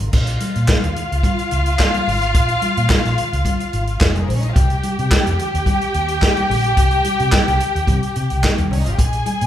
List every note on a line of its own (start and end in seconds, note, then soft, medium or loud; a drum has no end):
0.00 0.11 G#1 medium
0.00 0.12 F4 medium
0.00 closed hi-hat soft
0.13 0.36 A#1 medium
0.13 4.06 F4 medium
0.13 4.05 F5 loud
0.13 kick loud
0.13 crash medium
0.13 muted conga soft
0.27 closed hi-hat soft
0.27 muted conga soft
0.40 closed hi-hat medium
0.40 high conga medium
0.55 0.67 A#2 medium
0.55 closed hi-hat soft
0.68 kick loud
0.68 snare loud
0.68 clap medium
0.68 high conga medium
0.84 0.95 D#2 medium
0.84 closed hi-hat soft
0.84 muted conga soft
0.96 closed hi-hat medium
0.96 low conga medium
1.12 1.22 C#2 medium
1.12 closed hi-hat soft
1.23 kick loud
1.23 closed hi-hat medium
1.23 muted conga soft
1.23 high conga medium
1.23 low conga medium
1.39 closed hi-hat soft
1.39 muted conga soft
1.51 1.75 C#2 medium
1.51 closed hi-hat medium
1.66 closed hi-hat soft
1.79 kick medium
1.79 snare medium
1.79 clap medium
1.79 muted conga soft
1.94 closed hi-hat soft
1.94 muted conga soft
1.94 high conga medium
2.07 2.35 G#1 medium
2.07 open hi-hat medium
2.07 low conga medium
2.22 closed hi-hat soft
2.35 2.58 A#1 medium
2.35 kick loud
2.35 closed hi-hat medium
2.49 closed hi-hat soft
2.49 muted conga soft
2.62 closed hi-hat medium
2.62 high conga medium
2.77 2.88 A#2 medium
2.77 closed hi-hat soft
2.90 kick loud
2.90 snare loud
2.90 clap medium
2.90 muted conga soft
2.90 high conga medium
3.05 3.16 A#1 medium
3.05 snare soft
3.05 closed hi-hat soft
3.05 muted conga soft
3.18 closed hi-hat medium
3.18 low conga medium
3.33 3.43 C#2 medium
3.33 closed hi-hat soft
3.45 kick medium
3.45 closed hi-hat medium
3.45 muted conga soft
3.45 high conga medium
3.45 low conga medium
3.59 closed hi-hat soft
3.59 muted conga soft
3.73 3.96 G#1 medium
3.73 closed hi-hat medium
3.87 closed hi-hat soft
4.01 4.24 F1 medium
4.01 kick loud
4.01 snare loud
4.01 clap medium
4.01 muted conga soft
4.15 4.22 G#3 medium
4.15 4.22 G#4 medium
4.15 closed hi-hat soft
4.15 muted conga soft
4.15 high conga medium
4.22 4.28 A#3 medium
4.22 4.29 A#4 medium
4.28 4.51 A#1 medium
4.28 4.36 C4 medium
4.28 4.36 C5 medium
4.28 open hi-hat medium
4.28 low conga medium
4.36 4.43 C#4 medium
4.36 4.43 C#5 medium
4.42 4.50 D#4 medium
4.42 4.49 D#5 medium
4.42 closed hi-hat soft
4.49 4.56 F4 medium
4.49 4.56 F5 medium
4.55 4.79 C2 medium
4.55 8.62 G4 medium
4.55 8.62 G5 medium
4.55 kick loud
4.55 closed hi-hat medium
4.70 closed hi-hat soft
4.83 closed hi-hat medium
4.83 high conga medium
4.99 5.09 C3 medium
4.99 closed hi-hat soft
5.11 kick loud
5.11 snare loud
5.11 clap medium
5.11 high conga medium
5.27 5.37 F2 medium
5.27 closed hi-hat soft
5.27 muted conga soft
5.39 closed hi-hat medium
5.39 low conga medium
5.54 5.65 D#2 medium
5.54 closed hi-hat soft
5.66 kick medium
5.66 closed hi-hat medium
5.66 muted conga soft
5.66 high conga medium
5.66 low conga medium
5.81 closed hi-hat soft
5.81 muted conga soft
5.94 6.17 D#2 medium
5.94 closed hi-hat soft
6.08 closed hi-hat soft
6.22 kick loud
6.22 snare loud
6.22 clap medium
6.37 closed hi-hat soft
6.37 muted conga soft
6.37 high conga medium
6.49 6.72 A#1 medium
6.49 open hi-hat medium
6.49 low conga medium
6.64 closed hi-hat soft
6.77 7.00 C2 medium
6.77 kick loud
6.77 closed hi-hat medium
6.77 muted conga soft
6.91 closed hi-hat soft
6.91 muted conga soft
7.04 closed hi-hat medium
7.04 high conga medium
7.20 7.31 C3 medium
7.20 closed hi-hat soft
7.32 kick loud
7.32 snare loud
7.32 clap medium
7.32 muted conga soft
7.32 high conga medium
7.48 7.58 C2 medium
7.48 closed hi-hat soft
7.60 closed hi-hat medium
7.60 low conga medium
7.75 7.86 D#2 medium
7.75 closed hi-hat soft
7.87 8.00 C3 medium
7.87 kick medium
7.87 closed hi-hat medium
7.87 muted conga soft
7.87 high conga medium
7.87 low conga medium
8.03 closed hi-hat soft
8.16 8.28 C3 medium
8.16 closed hi-hat medium
8.30 8.42 C2 medium
8.30 closed hi-hat soft
8.44 kick medium
8.44 snare medium
8.44 clap medium
8.44 muted conga soft
8.58 8.69 D#2 medium
8.58 closed hi-hat soft
8.58 muted conga soft
8.58 high conga medium
8.71 8.83 C2 medium
8.71 8.79 C#4 medium
8.71 8.79 C#5 medium
8.71 open hi-hat medium
8.71 low conga medium
8.78 8.86 D#4 medium
8.78 8.86 D#5 medium
8.86 8.97 G#1 medium
8.86 8.92 F4 medium
8.86 8.92 F5 medium
8.86 closed hi-hat soft
8.92 8.99 G4 medium
8.92 8.99 G5 medium
8.98 9.22 A#1 medium
8.98 9.47 G#4 medium
8.98 9.47 G#5 loud
8.98 kick loud
8.98 closed hi-hat medium
9.13 closed hi-hat soft
9.26 closed hi-hat medium
9.26 high conga medium
9.41 9.47 A#2 medium
9.41 closed hi-hat soft